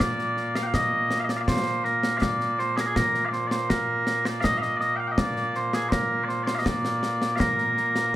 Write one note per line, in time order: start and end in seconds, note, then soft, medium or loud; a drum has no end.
0.00 8.15 A#2 medium
0.00 8.15 A#3 medium
0.00 0.55 D5 loud
0.00 concert bass drum medium
0.00 snare medium
0.19 snare soft
0.37 snare soft
0.55 0.63 F5 medium
0.55 snare medium
0.63 0.74 F5 medium
0.63 0.67 G5 medium
0.74 1.20 D#5 medium
0.74 concert bass drum medium
0.74 snare medium
1.11 snare medium
1.20 1.24 F5 medium
1.24 1.30 D#5 medium
1.29 1.37 D5 medium
1.29 snare medium
1.37 1.41 F5 medium
1.41 1.48 D5 medium
1.48 1.85 C5 loud
1.48 concert bass drum medium
1.48 snare medium
1.66 snare soft
1.85 2.17 A#4 medium
1.85 snare soft
2.03 snare medium
2.17 2.22 F5 medium
2.22 2.59 D5 medium
2.22 concert bass drum medium
2.22 snare medium
2.40 snare soft
2.59 2.77 C5 medium
2.59 snare soft
2.77 2.81 G#4 medium
2.77 snare medium
2.81 2.86 A#4 medium
2.86 2.96 G#4 medium
2.96 3.25 A#4 medium
2.96 concert bass drum medium
2.96 snare medium
3.14 snare soft
3.25 3.33 D5 medium
3.25 3.28 F5 medium
3.33 3.47 C5 medium
3.33 snare soft
3.47 3.51 D5 medium
3.51 3.70 C5 medium
3.51 snare medium
3.70 4.26 A#4 medium
3.70 concert bass drum soft
3.70 snare medium
4.07 snare medium
4.25 4.41 D5 medium
4.25 snare medium
4.41 4.58 D#5 loud
4.41 4.44 F5 loud
4.41 concert bass drum medium
4.41 snare medium
4.58 4.76 D#5 loud
4.58 4.62 F5 medium
4.62 snare soft
4.76 4.80 D5 medium
4.76 4.96 D#5 loud
4.81 snare soft
4.96 5.08 F5 medium
4.96 5.00 G5 medium
5.08 5.18 D#5 medium
5.08 5.12 G5 medium
5.18 5.56 D5 loud
5.18 concert bass drum medium
5.18 snare loud
5.36 snare soft
5.55 5.74 C5 medium
5.55 snare soft
5.73 5.89 G#4 medium
5.73 snare medium
5.89 6.24 A#4 medium
5.89 5.92 C5 medium
5.89 concert bass drum medium
5.89 snare loud
6.24 6.28 D5 medium
6.28 6.43 C5 medium
6.28 snare soft
6.43 6.55 C5 medium
6.43 6.47 D5 medium
6.47 snare medium
6.55 6.65 D#5 medium
6.55 6.59 F5 medium
6.65 7.36 D5 medium
6.65 concert bass drum medium
6.65 snare loud
6.85 snare medium
7.03 snare medium
7.22 snare medium
7.36 8.15 A#4 medium
7.36 7.39 F5 medium
7.40 concert bass drum medium
7.40 snare loud
7.58 snare soft
7.77 snare soft
7.96 snare medium